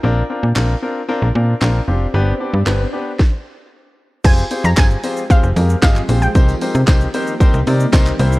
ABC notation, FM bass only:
X:1
M:4/4
L:1/16
Q:1/4=114
K:Cm
V:1 name="FM bass" clef=bass
B,,,2 z B,, B,,,2 z3 B,,, B,,2 B,,,2 F,,,2 | G,,,2 z G,, G,,,2 z8 z2 | F,,,2 z F,, G,,,2 z3 F,,, F,,2 G,,,2 B,,,2 | C,,2 z C, C,,2 z3 C,, C,2 C,,2 C,,2 |]